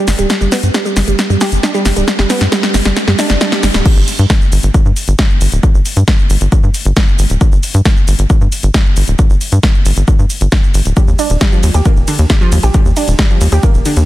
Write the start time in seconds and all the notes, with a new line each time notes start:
0.08 G1, snare, open hi-hat, shaker
0.19 D1 G3, closed hi-hat, shaker
0.30 snare, closed hi-hat, shaker
0.41 G1 G3, shaker
0.52 B3, snare, open hi-hat, shaker
0.63 G2, closed hi-hat, shaker
0.74 G3, snare, closed hi-hat, shaker
0.85 G3, shaker
0.97 G1, snare, open hi-hat, shaker
1.08 G1 G3, closed hi-hat, shaker
1.19 snare, closed hi-hat, shaker
1.30 G2 G3, shaker
1.41 G4, snare, open hi-hat, shaker
1.52 G1, closed hi-hat, shaker
1.63 D4, snare, closed hi-hat, shaker
1.74 G3, shaker
1.85 G1, snare, open hi-hat, shaker
1.97 D1 G3, closed hi-hat, shaker
2.08 snare, closed hi-hat, shaker
2.19 G1 G3, snare, shaker
2.30 B3, snare, open hi-hat, shaker
2.41 G2, snare, closed hi-hat, shaker
2.52 G3, snare, closed hi-hat, shaker
2.63 G3, snare, shaker
2.74 G1, snare, open hi-hat, shaker
2.85 G1 G3, snare, closed hi-hat, shaker
2.97 snare, closed hi-hat, shaker
3.08 G2 G3, snare, shaker
3.19 D4, snare, open hi-hat, shaker
3.30 G1, snare, closed hi-hat, shaker
3.41 D4, snare, closed hi-hat, shaker
3.52 G3, snare, shaker
3.63 G1, snare, open hi-hat, shaker
3.74 D1 G2, snare, closed hi-hat, shaker
3.86 kick, closed hi-hat, crash, shaker
3.97 G1, shaker
4.08 open hi-hat, shaker
4.19 G2, closed hi-hat, shaker
4.30 kick, snare, closed hi-hat, shaker
4.41 shaker
4.52 G1, open hi-hat, shaker
4.63 G1, closed hi-hat, shaker
4.74 kick, closed hi-hat, shaker
4.85 G2, shaker
4.96 open hi-hat, shaker
5.08 G1, closed hi-hat, shaker
5.19 kick, snare, closed hi-hat, shaker
5.30 shaker
5.41 G1, open hi-hat, shaker
5.52 D1, closed hi-hat, shaker
5.63 kick, closed hi-hat, shaker
5.74 G1, shaker
5.85 open hi-hat, shaker
5.97 G2, closed hi-hat, shaker
6.08 kick, snare, closed hi-hat, shaker
6.19 shaker
6.30 G1, open hi-hat, shaker
6.41 G1, closed hi-hat, shaker
6.52 kick, closed hi-hat, shaker
6.63 G2, shaker
6.74 open hi-hat, shaker
6.85 G1, closed hi-hat, shaker
6.97 kick, snare, closed hi-hat, shaker
7.08 shaker
7.19 G1, open hi-hat, shaker
7.30 D1, closed hi-hat, shaker
7.41 kick, closed hi-hat, shaker
7.52 G1, shaker
7.63 open hi-hat, shaker
7.74 G2, closed hi-hat, shaker
7.85 kick, snare, closed hi-hat, shaker
7.97 shaker
8.08 G1, open hi-hat, shaker
8.19 G1, closed hi-hat, shaker
8.30 kick, closed hi-hat, shaker
8.41 G2, shaker
8.52 open hi-hat, shaker
8.63 G1, closed hi-hat, shaker
8.74 kick, snare, closed hi-hat, shaker
8.85 shaker
8.96 G1, open hi-hat, shaker
9.08 D1, closed hi-hat, shaker
9.19 kick, closed hi-hat, shaker
9.30 G1, shaker
9.41 open hi-hat, shaker
9.52 G2, closed hi-hat, shaker
9.63 kick, snare, closed hi-hat, shaker
9.74 shaker
9.85 G1, open hi-hat, shaker
9.97 G1, closed hi-hat, shaker
10.08 kick, closed hi-hat, shaker
10.19 G2, shaker
10.30 open hi-hat, shaker
10.41 G1, closed hi-hat, shaker
10.52 kick, snare, closed hi-hat, shaker
10.63 shaker
10.74 G1, open hi-hat, shaker
10.85 D1, closed hi-hat, shaker
10.97 G3, kick, closed hi-hat, ride, shaker
11.08 D#2, shaker
11.19 D4, open hi-hat, ride, shaker
11.30 D#1, closed hi-hat, shaker
11.41 G3, kick, snare, closed hi-hat, ride, shaker
11.52 F3, shaker
11.63 D#2, open hi-hat, ride, shaker
11.74 D#2 G4, closed hi-hat, shaker
11.85 A#3, kick, closed hi-hat, ride, shaker
11.97 D#1, shaker
12.08 D3, open hi-hat, ride, shaker
12.19 D#2, closed hi-hat, shaker
12.30 G3, kick, snare, closed hi-hat, ride, shaker
12.41 F3, shaker
12.52 D#2, open hi-hat, ride, shaker
12.63 A#1 G4, closed hi-hat, shaker
12.74 G3, kick, closed hi-hat, ride, shaker
12.85 D#2, shaker
12.96 D4, open hi-hat, ride, shaker
13.08 D#1, closed hi-hat, shaker
13.19 G3, kick, snare, closed hi-hat, ride, shaker
13.30 F3, shaker
13.41 D#2, open hi-hat, ride, shaker
13.52 D#2 G4, closed hi-hat, shaker
13.63 A#3, kick, closed hi-hat, ride, shaker
13.74 D#1, shaker
13.85 D3, open hi-hat, ride, shaker
13.97 D#2, closed hi-hat, shaker